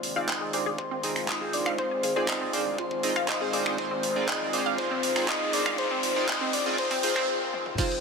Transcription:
Already playing: D#3 G#3 C4 F4 C5 C6, riser
0.03 F1, open hi-hat
0.16 F1 C4 D#4 F4 G#4 D5 F5
0.28 C5 D#5 D#6, kick, clap
0.41 F1 G#4
0.53 C4 D#4 F4 G#4 C5 D5 D6, open hi-hat
0.66 F1 G#4
0.78 C5 C6, kick
0.91 C4
1.03 F1 C4 D#4 F4 G#4 D#5, open hi-hat
1.16 F1, finger snap, open hi-hat
1.28 F4 D#5 D#6, kick, clap
1.41 C4 D#4 F4 G#4 C5
1.53 F1 D5 D6, open hi-hat
1.66 F1 F5, finger snap
1.78 C4 D#4 F4 G#4 C5 C6, kick
1.91 G#4
2.03 G#1 G#4, open hi-hat
2.16 G#1 C4 D#4 F4 G#4 D5
2.28 D#5 D#6, kick, clap
2.41 F1 C4
2.53 C4 D#4 F4 G#4 C5 D5 D6, open hi-hat
2.66 F1
2.78 F4 C5 C6, kick
2.91 kick
3.03 D#1 C4 D#4 F4 G#4 D#5, open hi-hat
3.16 D#1 F5, finger snap
3.28 C5 D#5 D#6, kick, clap
3.41 C4 D#4 F4 G#4 C5
3.53 F1 G#4 D5 D6, open hi-hat
3.66 F1 G#4, finger snap
3.78 C4 D#4 F4 G#4 C5 C6, kick
3.91 C4
4.03 F1, open hi-hat
4.16 F1 C4 D#4 F4 G#4 D5
4.28 F4 D#5 D#6, kick, clap
4.53 C4 D#4 F4 G#4 C5 D5 D6, open hi-hat
4.66 F1 F5
4.78 C4 D#4 F4 G#4 C5 C6, kick
4.91 C4
5.03 F1, open hi-hat
5.16 F1 C4 D#4 F4 G#4 D5, finger snap, open hi-hat
5.28 F4 D#5 D#6, kick, clap
5.53 F1 C4 D#4 F4 G#4 C5 D5 D6, open hi-hat
5.66 F1 F5, finger snap
5.78 C4 D#4 F4 G#4 C5 C6, kick
5.91 C4
6.03 G#1, open hi-hat
6.16 G#1 C4 D#4 F4 G#4 D5
6.28 G#4 D#5 D#6, kick, clap
6.41 F1 C4
6.53 D5 D6, open hi-hat
6.66 F1 C4 D#4 F4 G#4 D5
6.78 C4 D#4 F4 G#4 C5 C6, kick
6.91 C4, kick, open hi-hat
7.03 C4 D#4 F4 G#4 C5, open hi-hat
7.16 D#1 C4, finger snap
7.53 high tom
7.66 mid tom
7.78 D#3 G#3 C4 D#4 F4 G#4 C5 C6, kick, crash, shekere
7.90 shekere

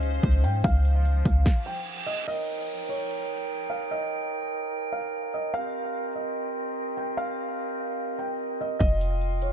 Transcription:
Already playing: C#2 F3 C#4 D#4 C5 D#5 F5
0.03 closed hi-hat
0.23 C#2, kick, closed hi-hat
0.44 G#2 G5, closed hi-hat
0.64 C#2 F5, kick, closed hi-hat
0.85 closed hi-hat
1.05 closed hi-hat
1.25 C#2, kick, closed hi-hat
1.46 kick, snare, reverse cymbal
1.66 G5
2.06 D#5
2.27 D#4 A#4 C#5 D#5 G5, downlifter
2.89 C#5
3.70 F5
3.91 D#5
4.92 F5
5.34 D#5
5.54 C4 G4 D#5 F5
6.15 D#5
6.97 G5
7.17 F5
8.19 G5
8.61 D#5
8.79 F1 D#4 F4 D#5 F5 G5, kick, closed hi-hat
9.01 closed hi-hat
9.21 closed hi-hat
9.42 C#5, closed hi-hat

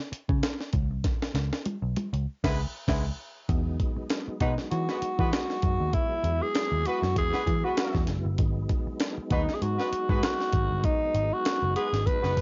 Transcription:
0.12 muted picked electric bass stroke, closed hi-hat
0.29 C#3, kick
0.43 snare, closed hi-hat
0.61 snare
0.73 C#2, kick, closed hi-hat
0.90 C2
1.04 kick, snare, closed hi-hat
1.22 snare
1.34 C#2, snare, closed hi-hat
1.53 snare
1.65 closed hi-hat, high tom
1.82 B1
1.96 closed hi-hat, high tom
2.13 C#2, closed hi-hat
2.44 C#2 G#3 B3 E4 B4, kick, snare, crash
2.88 C#2 G#3 B3 E4 B4, kick, snare, crash
3.48 E2 F#3 G#3 B3 D#4, kick, closed hi-hat
3.80 kick, closed hi-hat
3.96 muted picked electric bass stroke
4.10 snare, closed hi-hat
4.28 muted picked electric bass stroke
4.40 B2 G#3 B3 D#4 F#4 B4, kick, closed hi-hat
4.58 snare
4.71 E3 F#4, closed hi-hat
4.89 G#3 B3 F#4 B4, snare
5.02 muted picked electric bass stroke, closed hi-hat
5.19 E3 G#3 B3 F#4 B4, kick
5.32 F#4, snare, closed hi-hat
5.50 snare
5.62 F#2, kick, closed hi-hat
5.80 D#2
5.93 E4, kick, closed hi-hat
6.24 E2, closed hi-hat
6.42 G#4
6.55 snare, closed hi-hat
6.72 D#2
6.85 G#3 B3 F#4 B4, closed hi-hat
7.02 F#2, snare
7.16 E2 G#4, kick, closed hi-hat
7.33 G#3 B3 F#4 B4, snare
7.47 E3, kick, closed hi-hat
7.64 G#3 B3 F#4 B4
7.77 snare, closed hi-hat
7.95 E2, kick, snare
8.07 F#1, snare, closed hi-hat
8.25 G1
8.38 G#1 G#3 D#4, kick, closed hi-hat
8.69 kick, closed hi-hat
8.87 muted picked electric bass stroke
9.00 snare, closed hi-hat
9.18 muted picked electric bass stroke
9.31 D#2 G#3 B3 D#4 F#4 B4, kick, closed hi-hat
9.49 snare
9.55 G#4
9.62 G#2 F#4, closed hi-hat
9.78 G#3 B3 F#4 B4, snare
9.93 muted picked electric bass stroke, closed hi-hat
10.09 G#2 G#3 B3 F#4 B4, kick
10.23 F#4, snare, closed hi-hat
10.41 snare
10.53 G#1, kick, closed hi-hat
10.71 G1
10.84 D#4, kick, closed hi-hat
11.15 G#1, closed hi-hat
11.33 F#4
11.45 snare, closed hi-hat
11.62 F#1
11.76 G#3 B3 F#4 G#4 B4, closed hi-hat
11.93 G#1, snare, closed hi-hat
12.06 B4, kick, closed hi-hat
12.22 F#1 G#3 B3 F#4 B4, snare
12.37 kick, open hi-hat

